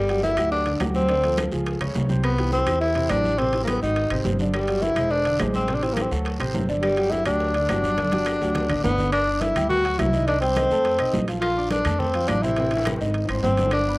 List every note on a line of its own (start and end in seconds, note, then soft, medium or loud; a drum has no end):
0.00 0.34 G1 medium
0.00 0.21 G3 medium
0.09 0.33 F#3 medium
0.09 0.33 F#4 medium
0.09 0.33 G4 medium
0.09 high conga soft
0.09 high timbale medium
0.23 0.50 E4 loud
0.23 high bongo medium
0.23 high conga medium
0.23 low timbale medium
0.23 short guiro medium
0.37 0.77 D2 medium
0.37 0.61 F#3 medium
0.37 0.61 F#4 medium
0.37 0.62 G4 medium
0.37 high timbale medium
0.37 short guiro medium
0.37 claves medium
0.52 0.79 D4 medium
0.52 high bongo medium
0.52 high conga soft
0.52 long guiro medium
0.66 0.78 D3 medium
0.66 0.78 D4 medium
0.66 0.78 D5 medium
0.66 high bongo soft
0.66 high conga soft
0.66 high timbale medium
0.80 1.47 D2 medium
0.80 1.04 F#3 medium
0.80 1.04 F#4 medium
0.80 1.05 G4 medium
0.80 high bongo soft
0.80 low bongo medium
0.80 high conga medium
0.80 high timbale medium
0.80 low timbale medium
0.80 short guiro medium
0.80 claves medium
0.94 1.49 C4 medium
0.94 high conga medium
0.94 short guiro medium
1.09 1.21 D3 medium
1.09 1.21 D4 medium
1.09 1.21 D5 medium
1.09 high bongo medium
1.09 high conga soft
1.09 high timbale medium
1.09 long guiro medium
1.23 1.48 F3 medium
1.23 1.48 F4 medium
1.23 1.48 A4 medium
1.23 high bongo soft
1.23 high conga soft
1.23 high timbale medium
1.38 high bongo medium
1.38 high conga medium
1.38 high timbale medium
1.38 low timbale medium
1.38 short guiro medium
1.38 claves medium
1.52 1.79 C#2 medium
1.52 1.76 F3 medium
1.52 1.76 F4 medium
1.52 1.76 G#4 medium
1.52 high bongo soft
1.52 high conga soft
1.52 short guiro medium
1.66 high bongo medium
1.66 high conga soft
1.66 high timbale medium
1.66 long guiro medium
1.80 1.94 C#2 medium
1.80 2.05 C#3 medium
1.80 2.05 C#4 medium
1.80 2.05 C#5 medium
1.80 high bongo soft
1.80 high conga soft
1.80 high timbale medium
1.80 claves medium
1.95 2.62 C2 medium
1.95 high bongo soft
1.95 low bongo medium
1.95 high conga medium
1.95 low timbale medium
1.95 short guiro medium
2.09 2.33 C3 medium
2.09 2.33 C4 medium
2.09 2.33 C5 medium
2.09 high conga medium
2.09 short guiro medium
2.23 2.51 B3 medium
2.23 high bongo medium
2.23 high timbale medium
2.23 long guiro medium
2.23 claves medium
2.38 2.62 E3 medium
2.38 2.62 E4 medium
2.38 2.62 G4 medium
2.38 high bongo soft
2.38 high conga soft
2.38 high timbale medium
2.52 2.79 C4 medium
2.52 high bongo medium
2.52 high conga medium
2.52 low timbale medium
2.52 short guiro medium
2.66 3.07 E2 medium
2.66 2.91 E3 medium
2.66 2.91 E4 medium
2.66 2.91 G4 medium
2.66 high bongo soft
2.66 high timbale loud
2.66 short guiro medium
2.66 claves medium
2.81 3.11 E4 loud
2.81 high bongo medium
2.81 high conga soft
2.81 long guiro medium
2.95 3.07 C3 medium
2.95 3.08 C4 medium
2.95 3.08 C5 medium
2.95 high bongo soft
2.95 high conga soft
2.95 high timbale medium
3.10 3.76 A1 medium
3.10 3.34 E3 medium
3.10 3.40 D4 loud
3.10 3.34 E4 medium
3.10 3.34 G4 medium
3.10 high bongo soft
3.10 low bongo medium
3.10 high conga medium
3.10 high timbale medium
3.10 low timbale medium
3.10 short guiro medium
3.10 claves medium
3.24 high conga medium
3.24 short guiro medium
3.38 3.51 C3 medium
3.38 3.63 C4 medium
3.38 3.51 C4 medium
3.38 3.51 C5 medium
3.38 high bongo medium
3.38 high timbale medium
3.38 long guiro medium
3.53 3.77 E3 medium
3.53 3.77 E4 medium
3.53 3.77 G4 medium
3.53 high bongo soft
3.53 high conga soft
3.53 high timbale medium
3.64 3.70 A#3 medium
3.64 high conga medium
3.64 high timbale medium
3.64 low timbale medium
3.64 claves medium
3.68 3.82 B3 medium
3.68 high bongo medium
3.68 short guiro medium
3.81 4.08 G#1 medium
3.81 4.06 D#3 medium
3.81 4.22 D#4 medium
3.81 4.06 D#4 medium
3.81 4.06 F#4 medium
3.81 high bongo soft
3.81 high conga soft
3.81 short guiro medium
3.96 high bongo medium
3.96 high timbale medium
3.96 long guiro medium
4.10 4.24 G#1 medium
4.10 4.35 C3 medium
4.10 4.35 C4 medium
4.10 4.35 C5 medium
4.10 high bongo soft
4.10 high conga soft
4.10 high timbale medium
4.10 claves medium
4.24 4.91 G1 medium
4.24 high bongo soft
4.24 low bongo medium
4.24 high conga medium
4.24 low timbale medium
4.24 short guiro medium
4.39 4.63 D3 medium
4.39 4.63 D4 medium
4.39 4.64 D5 medium
4.39 high conga medium
4.39 short guiro medium
4.54 4.84 G3 medium
4.54 high bongo medium
4.54 high timbale medium
4.54 long guiro medium
4.54 claves medium
4.68 4.92 F#3 medium
4.68 4.92 F#4 medium
4.68 4.92 G4 medium
4.68 high bongo soft
4.68 high conga soft
4.68 high timbale medium
4.82 5.12 E4 loud
4.82 high bongo medium
4.82 high conga medium
4.82 low timbale medium
4.82 short guiro medium
4.96 5.37 E1 medium
4.96 5.21 G#3 medium
4.96 5.21 G#4 medium
4.96 5.21 C5 medium
4.96 high bongo soft
4.96 high timbale medium
4.96 short guiro medium
4.96 claves medium
5.11 5.40 D4 loud
5.11 high bongo medium
5.11 high conga soft
5.11 long guiro medium
5.25 5.37 D3 medium
5.25 5.37 D4 medium
5.25 5.38 D5 medium
5.25 high bongo soft
5.25 high conga soft
5.25 high timbale medium
5.39 6.06 A1 medium
5.39 5.63 G#3 medium
5.39 5.63 G#4 medium
5.39 5.63 C5 medium
5.39 high bongo soft
5.39 low bongo medium
5.39 high conga medium
5.39 high timbale medium
5.39 low timbale medium
5.39 short guiro medium
5.39 claves medium
5.54 5.76 C4 medium
5.54 high conga medium
5.54 short guiro medium
5.68 5.80 C3 medium
5.68 5.81 C4 medium
5.68 5.81 C5 medium
5.68 high bongo medium
5.68 high conga soft
5.68 high timbale medium
5.68 long guiro medium
5.75 5.85 D4 medium
5.83 6.06 E3 medium
5.83 5.95 C4 medium
5.83 6.06 E4 medium
5.83 6.06 G4 medium
5.83 high bongo soft
5.83 high conga soft
5.83 high timbale medium
5.93 6.03 A#3 medium
5.93 high bongo medium
5.93 high conga medium
5.93 high timbale medium
5.93 low timbale medium
5.93 claves medium
5.97 short guiro medium
6.01 6.11 C4 medium
6.11 6.38 D2 medium
6.11 6.35 F#3 medium
6.11 6.35 F#4 medium
6.11 6.35 A4 medium
6.11 high bongo soft
6.11 high conga soft
6.11 short guiro medium
6.25 high bongo medium
6.25 high conga soft
6.25 high timbale medium
6.25 long guiro medium
6.40 6.53 A1 medium
6.40 6.63 C3 medium
6.40 6.63 C4 medium
6.40 6.64 C5 medium
6.40 high bongo soft
6.40 high conga soft
6.40 high timbale medium
6.40 claves medium
6.54 7.20 G1 medium
6.54 high bongo soft
6.54 low bongo medium
6.54 high conga medium
6.54 low timbale medium
6.54 short guiro medium
6.69 6.92 D3 medium
6.69 6.92 D4 medium
6.69 6.93 D5 medium
6.69 high conga medium
6.69 short guiro medium
6.82 7.13 G3 medium
6.82 high bongo medium
6.82 high conga soft
6.82 high timbale medium
6.82 long guiro medium
6.82 claves medium
6.97 7.21 F#3 medium
6.97 7.21 F#4 medium
6.97 7.21 G4 medium
6.97 high bongo soft
6.97 high conga soft
6.97 high timbale medium
7.11 7.26 E4 loud
7.11 high bongo medium
7.11 high conga soft
7.11 low timbale medium
7.11 short guiro medium
7.25 7.66 D2 medium
7.25 7.50 F#3 medium
7.25 8.80 D4 loud
7.25 7.50 F#4 medium
7.25 7.50 G4 medium
7.25 high bongo soft
7.25 high timbale loud
7.25 short guiro medium
7.25 claves medium
7.40 high bongo medium
7.40 high conga soft
7.40 long guiro medium
7.54 7.67 D3 medium
7.54 7.67 D4 medium
7.54 7.67 D5 medium
7.54 high bongo soft
7.54 high conga soft
7.54 high timbale medium
7.69 8.36 G1 medium
7.69 7.93 F#3 medium
7.69 7.93 F#4 medium
7.69 7.93 G4 medium
7.69 high bongo soft
7.69 low bongo medium
7.69 high conga medium
7.69 high timbale medium
7.69 low timbale medium
7.69 short guiro medium
7.69 claves medium
7.84 high conga medium
7.84 short guiro medium
7.98 8.10 D3 medium
7.98 8.10 D4 medium
7.98 8.10 D5 medium
7.98 high bongo medium
7.98 high conga medium
7.98 high timbale medium
7.98 long guiro medium
8.12 8.36 F#3 medium
8.12 8.36 F#4 medium
8.12 8.36 G4 medium
8.12 high conga loud
8.12 high timbale medium
8.26 high bongo medium
8.26 high timbale medium
8.26 low timbale medium
8.26 short guiro medium
8.26 claves medium
8.41 8.68 D2 medium
8.41 8.65 F#3 medium
8.41 8.65 F#4 medium
8.41 8.65 G4 medium
8.41 high bongo soft
8.41 short guiro medium
8.55 high bongo medium
8.55 low conga medium
8.55 high timbale medium
8.55 long guiro medium
8.69 8.83 A1 medium
8.69 8.94 D3 medium
8.69 8.94 D4 medium
8.69 8.94 D5 medium
8.69 high bongo soft
8.69 low conga medium
8.69 high timbale medium
8.69 claves medium
8.84 9.50 G1 medium
8.84 9.11 B3 loud
8.84 high bongo soft
8.84 low bongo medium
8.84 low conga loud
8.84 low timbale medium
8.84 short guiro medium
8.98 9.10 D3 medium
8.98 9.10 D4 medium
8.98 9.11 D5 medium
8.98 low conga medium
8.98 short guiro medium
9.12 9.42 D4 loud
9.12 high bongo medium
9.12 high conga soft
9.12 high timbale medium
9.12 long guiro medium
9.12 claves medium
9.27 9.51 D4 medium
9.27 9.51 D5 medium
9.27 9.51 D6 medium
9.27 high conga soft
9.41 9.69 E4 loud
9.41 high bongo medium
9.41 high conga medium
9.41 high timbale medium
9.41 low timbale medium
9.41 short guiro medium
9.56 9.96 D2 medium
9.56 9.80 G3 medium
9.56 9.80 G4 medium
9.56 9.80 G5 medium
9.56 high bongo soft
9.56 high conga soft
9.56 low conga medium
9.56 high timbale loud
9.56 short guiro medium
9.56 claves medium
9.69 10.00 F#4 loud
9.69 high bongo medium
9.69 high conga soft
9.69 low conga medium
9.69 long guiro medium
9.85 10.08 F#3 medium
9.85 10.08 F#4 medium
9.85 10.08 F#5 medium
9.85 high bongo soft
9.85 high conga soft
9.85 high timbale medium
9.99 10.65 C2 medium
9.99 10.27 E4 loud
9.99 high bongo soft
9.99 low bongo medium
9.99 high conga medium
9.99 high timbale medium
9.99 low timbale medium
9.99 short guiro medium
9.99 claves medium
10.13 10.25 D#3 medium
10.13 10.25 D#4 medium
10.13 10.26 D#5 medium
10.13 high bongo soft
10.13 high conga medium
10.13 short guiro medium
10.27 10.40 D#3 medium
10.27 10.41 D4 medium
10.27 10.40 D#4 medium
10.27 10.40 D#5 medium
10.27 high bongo medium
10.27 high timbale medium
10.27 long guiro medium
10.41 10.54 G3 medium
10.41 11.24 C4 loud
10.41 10.54 G4 medium
10.41 10.55 G5 medium
10.41 high conga soft
10.41 high timbale medium
10.56 10.68 D#3 medium
10.56 10.69 D#4 medium
10.56 10.69 D#5 medium
10.56 high bongo medium
10.56 high conga medium
10.56 high timbale medium
10.56 low timbale medium
10.56 short guiro medium
10.56 claves medium
10.70 10.97 F2 loud
10.70 10.95 A3 medium
10.70 10.95 A4 medium
10.70 10.95 A5 medium
10.70 short guiro medium
10.85 high bongo medium
10.85 high conga soft
10.85 high timbale medium
10.85 long guiro medium
10.99 11.13 B1 medium
10.99 11.23 D#4 medium
10.99 11.23 D#5 medium
10.99 11.24 D#6 medium
10.99 high bongo soft
10.99 high conga soft
10.99 high timbale medium
10.99 claves medium
11.13 11.80 A#1 medium
11.13 high bongo soft
11.13 low bongo medium
11.13 high conga medium
11.13 low timbale medium
11.13 short guiro medium
11.28 11.52 F3 medium
11.28 11.52 F4 medium
11.28 11.52 F5 medium
11.28 high bongo soft
11.28 high timbale medium
11.28 short guiro medium
11.41 11.68 F4 loud
11.41 high bongo medium
11.41 high conga soft
11.41 high timbale medium
11.41 long guiro medium
11.41 claves medium
11.57 11.81 D4 medium
11.57 11.81 D5 medium
11.57 11.81 D6 medium
11.57 high conga soft
11.71 12.01 D4 medium
11.71 high bongo medium
11.71 high conga medium
11.71 high timbale medium
11.71 low timbale medium
11.71 short guiro medium
11.85 12.26 F2 medium
11.85 12.09 A3 medium
11.85 12.10 A4 medium
11.85 12.10 A5 medium
11.85 high bongo soft
11.85 high conga soft
11.85 low conga medium
11.85 high timbale loud
11.85 short guiro medium
11.85 claves medium
12.00 12.30 C4 medium
12.00 high bongo medium
12.00 high conga soft
12.00 low conga medium
12.00 long guiro medium
12.14 12.38 F3 medium
12.14 12.38 F4 medium
12.14 12.39 F5 medium
12.14 high bongo soft
12.14 high conga soft
12.14 high timbale medium
12.28 12.95 A1 loud
12.28 12.44 D4 medium
12.28 high bongo soft
12.28 low bongo medium
12.28 high conga medium
12.28 high timbale loud
12.28 low timbale medium
12.28 short guiro medium
12.28 claves medium
12.42 12.55 C3 medium
12.42 12.55 C4 medium
12.42 13.00 E4 loud
12.42 12.56 C5 medium
12.42 high bongo soft
12.42 short guiro medium
12.56 12.70 C3 medium
12.56 12.70 C4 medium
12.56 12.70 C5 medium
12.56 high bongo medium
12.56 high conga soft
12.56 high timbale medium
12.56 long guiro medium
12.71 12.84 E3 medium
12.71 12.84 E4 medium
12.71 12.84 E5 medium
12.71 high conga soft
12.71 high timbale medium
12.77 high bongo loud
12.85 12.98 C3 medium
12.85 12.98 C4 medium
12.85 12.98 C5 medium
12.85 high bongo loud
12.85 high conga medium
12.85 high timbale medium
12.85 low timbale medium
12.85 short guiro medium
12.85 claves medium
12.96 high bongo medium
13.00 13.27 G#1 medium
13.00 13.24 D#3 medium
13.00 13.24 D#4 medium
13.00 13.25 D#5 medium
13.00 short guiro medium
13.06 high bongo medium
13.14 high conga soft
13.14 high timbale medium
13.14 long guiro medium
13.25 13.43 G#1 medium
13.25 low bongo medium
13.25 high timbale medium
13.25 claves medium
13.30 13.53 C4 medium
13.30 13.53 C5 medium
13.30 13.54 C6 medium
13.30 high conga soft
13.35 low bongo medium
13.43 13.98 G1 loud
13.43 13.71 C4 medium
13.43 low bongo medium
13.43 high conga medium
13.43 low timbale medium
13.43 short guiro medium
13.57 13.82 D3 medium
13.57 13.82 D4 medium
13.57 13.82 D5 medium
13.57 high conga medium
13.57 high timbale medium
13.57 short guiro medium
13.63 low bongo medium
13.71 13.98 D4 medium
13.71 high bongo medium
13.71 high conga soft
13.71 high timbale medium
13.71 long guiro medium
13.71 claves medium
13.88 13.98 B3 medium
13.88 13.98 B4 medium
13.88 13.98 B5 medium
13.88 high conga soft